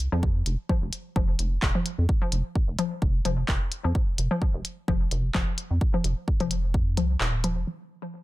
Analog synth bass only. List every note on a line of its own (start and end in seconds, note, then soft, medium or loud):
0.12 0.43 F2 medium
0.46 0.56 F1 loud
0.82 0.90 F1 loud
1.16 1.35 F1 loud
1.39 1.58 F1 loud
1.62 1.72 F1 medium
1.98 2.07 F2 medium
2.32 2.42 F1 medium
2.68 2.76 F1 loud
3.02 3.21 F1 loud
3.25 3.44 F1 loud
3.48 3.59 F1 medium
3.84 3.93 F2 medium
4.18 4.28 F1 medium
4.54 4.63 F1 loud
4.88 5.07 F1 loud
5.11 5.30 F1 loud
5.35 5.45 F1 medium
5.71 5.79 F2 medium
6.04 6.14 F1 medium
6.40 6.76 F1 loud
6.74 6.99 F2 medium
6.97 7.16 C2 medium
7.20 7.58 D#1 loud
7.56 7.65 F1 medium